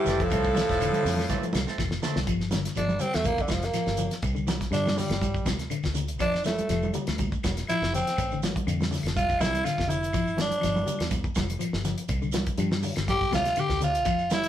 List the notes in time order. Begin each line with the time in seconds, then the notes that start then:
Already playing: G2 E3 G3 G4
0.05 F1 A3 C4, snare, closed hi-hat, low conga, shekere
0.19 A2 F3 A4, kick, closed hi-hat, shekere
0.25 F3
0.30 C2 A3 C4, muted clean electric guitar stroke, kick, closed hi-hat, high conga, claves, shekere
0.44 kick, shekere
0.55 E3, snare, closed hi-hat, high conga, shekere
0.69 E1 A3 C4, kick, snare, closed hi-hat, shekere
0.80 D3, closed hi-hat, high conga, claves, shekere
0.93 A3 C4, closed hi-hat, high conga, shekere
1.03 F2, snare, open hi-hat, low conga, shekere
1.17 E3, snare, high conga, claves, shekere
1.29 E3 A3 C4, kick, snare, closed hi-hat, high conga, low conga, shekere
1.42 F3, closed hi-hat, shekere
1.53 C2, snare, closed hi-hat, high conga, low conga, claves, shekere
1.67 A3 C4, snare, shekere
1.78 F1 E3, kick, snare, high conga, claves, shekere
1.91 snare, shekere
2.02 D3 A3 C4, muted clean electric guitar stroke, snare, low conga, shekere
2.16 C2, snare, shekere
2.26 G1 F3, kick, closed hi-hat, high conga, claves, shekere
2.40 snare, shekere
2.51 D3, snare, closed hi-hat, high conga, shekere
2.65 snare, closed hi-hat, shekere
2.75 G1 F3 D4, closed hi-hat, high conga, claves, shekere
2.88 high conga, shekere
2.99 G3 C4, closed hi-hat, low conga, shekere
3.13 E2 A3, snare, closed hi-hat, claves, shekere
3.24 A#3, kick, closed hi-hat, high conga, low conga, shekere
3.37 kick, shekere
3.42 D3
3.48 F1, kick, snare, closed hi-hat, high conga, claves, shekere
3.52 F3
3.61 A#3, snare, closed hi-hat, shekere
3.74 F3, muted fingered electric bass stroke, snare, closed hi-hat, high conga, claves, shekere
3.86 G1, snare, shekere
3.97 F3, closed hi-hat, low conga, shekere
4.10 snare, closed hi-hat, shekere
4.22 C2, kick, closed hi-hat, high conga, claves, shekere
4.35 D3, shekere
4.47 E3, snare, closed hi-hat, high conga, shekere
4.61 kick, snare, closed hi-hat, shekere
4.71 G2 D3 D4, snare, closed hi-hat, claves, shekere
4.86 snare, high conga, shekere
4.96 D3 G3, snare, open hi-hat, low conga, shekere
5.10 G1, snare, closed hi-hat, high conga, claves, shekere
5.21 kick, closed hi-hat, high conga, shekere
5.34 kick, shekere
5.46 D2 C3, kick, snare, closed hi-hat, high conga, claves, shekere
5.58 snare, closed hi-hat, shekere
5.70 D3, closed hi-hat, high conga, claves, shekere
5.83 D2, kick, snare, shekere
5.94 D3, closed hi-hat, low conga, shekere
6.08 closed hi-hat, shekere
6.19 F1 F3 D4, kick, closed hi-hat, high conga, claves, shekere
6.33 snare, shekere
6.44 E3 A3, snare, closed hi-hat, high conga, shekere
6.58 closed hi-hat, high conga, shekere
6.69 F1 F3, snare, closed hi-hat, claves, shekere
6.82 high conga, shekere
6.93 G3, closed hi-hat, low conga, shekere
7.07 D2, snare, closed hi-hat, claves, shekere
7.18 kick, closed hi-hat, high conga, low conga, shekere
7.32 kick, shekere
7.43 E1, kick, snare, closed hi-hat, high conga, claves, shekere
7.57 snare, closed hi-hat, shekere
7.67 F3 E4, muted fingered electric bass stroke, closed hi-hat, high conga, claves, shekere
7.82 F1, snare, shekere
7.93 F3 C4, closed hi-hat, low conga, shekere
8.07 snare, closed hi-hat, shekere
8.17 A1, kick, closed hi-hat, high conga, claves, shekere
8.31 D3, shekere
8.43 E3, snare, closed hi-hat, high conga, shekere
8.56 kick, closed hi-hat, high conga, shekere
8.67 F2 D3, closed hi-hat, high conga, claves, shekere
8.80 snare, high conga, shekere
8.91 D3, snare, open hi-hat, low conga, shekere
9.03 F1, snare, closed hi-hat, claves, shekere
9.16 F4, kick, closed hi-hat, high conga, shekere
9.30 kick, shekere
9.39 C2 E4, kick, closed hi-hat, high conga, low conga, claves, shekere
9.43 snare
9.54 closed hi-hat, shekere
9.64 D3 F4, snare, closed hi-hat, high conga, claves, shekere
9.78 F1, kick, snare, shekere
9.88 D3 E4, closed hi-hat, low conga, shekere
10.03 closed hi-hat, shekere
10.13 G1 F3, kick, closed hi-hat, high conga, claves, shekere
10.27 shekere
10.37 E3, snare, closed hi-hat, high conga, shekere
10.41 D4
10.50 closed hi-hat, high conga, shekere
10.61 G1 F3, snare, closed hi-hat, high conga, claves, shekere
10.76 high conga, shekere
10.86 G3, closed hi-hat, low conga, shekere
10.99 E2, snare, closed hi-hat, claves, shekere
11.10 kick, closed hi-hat, high conga, shekere
11.24 kick, shekere
11.35 F1, kick, snare, closed hi-hat, high conga, low conga, claves, shekere
11.48 closed hi-hat, shekere
11.59 F3, closed hi-hat, high conga, claves, shekere
11.73 G1, snare, shekere
11.84 F3, snare, closed hi-hat, low conga, shekere
11.98 closed hi-hat, shekere
12.09 C2, kick, closed hi-hat, high conga, claves, shekere
12.22 D3, shekere
12.32 E3, snare, closed hi-hat, high conga, shekere
12.46 kick, closed hi-hat, shekere
12.58 G2 F3, closed hi-hat, high conga, claves, shekere
12.71 snare, high conga, shekere
12.83 D3, open hi-hat, low conga, shekere
12.96 G1, snare, closed hi-hat, claves, shekere
13.08 G4, kick, closed hi-hat, high conga, shekere
13.21 kick, shekere
13.32 D2 C3 F4, kick, snare, closed hi-hat, high conga, low conga, claves, shekere
13.45 snare, closed hi-hat, shekere
13.56 D3 G4, closed hi-hat, high conga, claves, shekere
13.69 D2, kick, snare, shekere
13.80 D3 F4, closed hi-hat, low conga, shekere
13.94 closed hi-hat, shekere
14.05 F1 F3, kick, closed hi-hat, high conga, claves, shekere
14.18 shekere
14.30 E4, snare, closed hi-hat, high conga, shekere
14.44 closed hi-hat, shekere